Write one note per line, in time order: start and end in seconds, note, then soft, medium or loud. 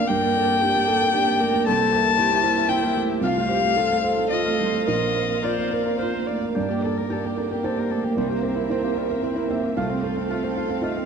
0.00 0.12 A#1 medium
0.00 0.12 A3 medium
0.00 0.12 A#3 medium
0.00 3.24 A#3 medium
0.00 0.11 C4 medium
0.00 0.12 D4 medium
0.00 0.12 F4 medium
0.00 0.11 A#4 medium
0.00 2.43 A#4 medium
0.00 0.12 C5 medium
0.00 1.67 D5 medium
0.00 0.11 F5 medium
0.00 3.22 C6 medium
0.00 3.26 D6 medium
0.07 1.63 G2 medium
0.07 0.60 G4 medium
0.07 0.63 A#4 medium
0.07 1.66 G5 loud
0.07 1.67 A5 medium
0.22 0.43 A#3 medium
0.22 0.34 D5 medium
0.35 0.56 A4 medium
0.35 0.73 D5 medium
0.49 0.69 A#3 medium
0.61 0.83 D4 medium
0.61 1.12 G4 loud
0.61 0.89 G4 medium
0.74 0.96 A#3 medium
0.74 1.39 D5 medium
0.87 1.13 A4 medium
0.87 1.09 A4 medium
0.87 0.99 G5 medium
1.01 1.22 A#4 medium
1.01 1.26 G5 medium
1.13 1.35 D4 medium
1.13 1.78 G4 medium
1.13 1.42 G4 medium
1.27 1.48 A#3 medium
1.27 3.26 G5 medium
1.40 1.54 A3 medium
1.40 1.67 A#4 loud
1.40 1.68 D5 medium
1.54 1.67 A#3 medium
1.66 3.19 C2 medium
1.66 2.17 C4 loud
1.66 3.23 G4 medium
1.66 2.20 A4 loud
1.66 3.23 E5 medium
1.66 2.71 A5 loud
1.79 2.00 A#3 medium
1.79 1.91 G4 medium
1.92 2.30 G4 medium
1.92 2.14 C5 medium
2.06 2.26 A#3 medium
2.18 2.69 C4 loud
2.18 2.39 E4 medium
2.18 2.45 G4 medium
2.31 2.52 A#3 medium
2.31 2.96 G4 medium
2.43 3.22 E4 medium
2.43 2.56 A#4 medium
2.43 2.65 C5 medium
2.56 2.78 A#4 medium
2.56 2.83 A#4 medium
2.69 6.57 C4 loud
2.69 2.91 E4 medium
2.69 2.96 G5 loud
2.82 3.04 A#3 medium
2.82 3.26 A#4 medium
2.95 3.09 A3 medium
2.95 3.26 G4 medium
3.09 3.23 A#3 medium
3.21 4.82 C2 medium
3.21 4.87 A3 medium
3.21 3.50 F4 medium
3.21 6.55 F4 medium
3.21 3.76 F4 loud
3.21 4.27 F5 loud
3.21 6.55 F5 medium
3.36 3.58 A3 medium
3.36 3.49 C5 medium
3.49 3.77 G4 medium
3.49 3.71 C5 medium
3.49 3.90 C5 medium
3.62 3.85 A3 medium
3.76 3.99 F4 medium
3.76 4.31 F4 medium
3.76 4.03 A4 medium
3.90 4.12 A3 medium
3.90 4.58 C5 medium
4.03 4.88 A4 medium
4.03 4.26 C5 medium
4.03 4.17 F5 medium
4.17 4.39 A4 medium
4.17 4.44 F5 medium
4.30 4.54 F4 medium
4.30 6.57 F4 medium
4.30 4.85 D#5 medium
4.45 4.68 A3 medium
4.45 4.99 F5 medium
4.59 4.73 G3 soft
4.59 6.57 C5 medium
4.73 4.87 A3 soft
4.86 6.52 A#1 medium
4.86 6.55 C4 medium
4.86 5.41 A#4 medium
4.86 5.38 A#4 medium
4.86 5.46 D#5 medium
5.01 5.24 A#3 soft
5.01 5.13 F5 medium
5.15 5.38 C5 soft
5.15 5.56 F5 medium
5.31 5.53 A#3 soft
5.42 5.66 F4 medium
5.42 5.98 A#4 medium
5.42 5.74 C5 medium
5.42 6.00 D5 medium
5.57 5.80 A#3 soft
5.57 6.26 F5 medium
5.71 5.99 A#4 medium
5.71 5.94 C5 medium
5.71 5.84 A#5 medium
5.85 6.08 A#4 medium
5.85 6.12 A#5 medium
5.99 6.23 F4 soft
5.99 8.96 A#4 medium
5.99 6.28 C5 medium
6.13 6.37 A#3 medium
6.13 9.78 A#5 soft
6.27 6.42 A3 soft
6.27 6.55 D5 medium
6.27 6.57 F5 medium
6.43 6.56 A#3 soft
6.55 8.13 G2 medium
6.55 9.73 A#3 medium
6.55 8.13 A#3 medium
6.55 6.72 D4 medium
6.55 7.09 G4 medium
6.55 8.13 A#4 medium
6.55 8.13 D5 medium
6.55 7.60 D5 medium
6.68 6.91 A#3 soft
6.68 6.87 G4 medium
6.68 6.81 D5 medium
6.82 7.05 A4 medium
6.82 6.99 A4 medium
6.82 7.22 D5 medium
6.98 7.19 A#3 soft
6.98 7.14 A#4 medium
7.10 7.63 G4 medium
7.10 7.32 G4 medium
7.10 7.27 A4 medium
7.24 7.45 A#3 soft
7.24 7.40 G4 medium
7.24 7.90 D5 medium
7.37 7.53 D4 medium
7.37 7.58 A4 medium
7.37 7.50 G5 medium
7.51 7.66 G4 medium
7.51 7.71 A#4 medium
7.51 7.76 G5 soft
7.64 7.85 G4 soft
7.64 8.30 G4 medium
7.64 7.81 A4 medium
7.64 8.13 C5 medium
7.77 7.98 A#3 soft
7.77 7.92 A#4 medium
7.77 9.79 G5 medium
7.90 8.03 A3 soft
7.90 8.06 A4 medium
7.90 8.19 D5 medium
8.04 8.17 A#3 soft
8.04 8.17 G4 medium
8.16 9.73 C2 medium
8.16 8.32 G3 medium
8.16 11.05 C4 medium
8.16 8.70 C4 medium
8.16 9.76 A#4 medium
8.16 8.41 A#4 medium
8.16 9.76 E5 medium
8.29 8.44 A#3 medium
8.29 8.51 C4 soft
8.29 8.43 G4 medium
8.42 8.57 C4 medium
8.42 8.83 G4 medium
8.42 8.64 A#4 medium
8.55 8.78 C4 soft
8.55 8.71 E4 medium
8.69 8.84 C4 medium
8.69 9.23 C4 medium
8.69 8.91 E4 soft
8.69 9.08 C5 medium
8.82 8.99 A#3 medium
8.82 9.04 C4 soft
8.82 9.49 G4 medium
8.95 9.10 G3 medium
8.95 9.17 A#4 medium
8.95 9.09 A#4 soft
9.08 9.24 A#3 medium
9.08 9.36 A#4 soft
9.08 9.31 C5 medium
9.22 9.37 C4 medium
9.22 11.05 C4 medium
9.22 9.44 E4 soft
9.35 9.57 C4 soft
9.35 9.50 E4 medium
9.35 9.79 A#4 medium
9.48 9.63 A#3 soft
9.48 9.65 C4 medium
9.48 9.79 G4 medium
9.48 9.75 E5 medium
9.63 9.76 A#3 medium
9.63 9.76 C4 soft
9.76 11.05 C2 medium
9.76 9.91 A3 medium
9.76 11.05 A3 medium
9.76 10.29 F4 medium
9.76 11.05 A4 medium
9.76 11.05 F5 medium
9.76 10.79 F5 medium
9.89 10.05 C4 medium
9.89 10.11 C4 soft
9.89 10.03 C5 medium
10.03 10.18 F4 medium
10.03 10.24 A4 medium
10.03 10.42 C5 medium
10.17 10.32 C4 medium
10.17 10.38 C4 soft
10.30 10.45 A3 medium
10.30 10.51 F4 soft
10.30 10.82 F4 medium
10.44 10.64 C4 soft
10.44 10.58 C4 medium
10.44 11.05 C5 medium
10.56 10.71 F4 medium
10.56 10.77 A4 medium
10.56 10.69 F5 medium
10.69 10.85 C4 medium
10.69 10.90 C5 medium
10.69 10.95 F5 medium
10.82 10.98 A3 medium
10.82 11.03 F4 medium
10.82 11.05 F4 medium
10.82 11.05 D#5 medium
10.95 11.05 C4 medium
10.95 11.05 F5 medium